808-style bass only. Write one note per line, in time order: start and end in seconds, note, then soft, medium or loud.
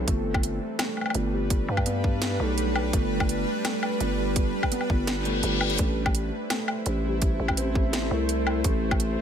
0.08 0.60 G1 loud
1.15 1.67 G1 loud
1.68 2.38 G2 loud
2.40 2.92 B1 medium
2.93 3.45 G1 loud
4.01 4.53 G1 medium
4.90 5.42 G1 loud
5.43 5.78 G1 loud
5.79 6.31 A1 loud
6.86 7.38 A1 loud
7.40 8.10 A1 loud
8.11 8.63 C2 medium
8.65 9.17 A1 loud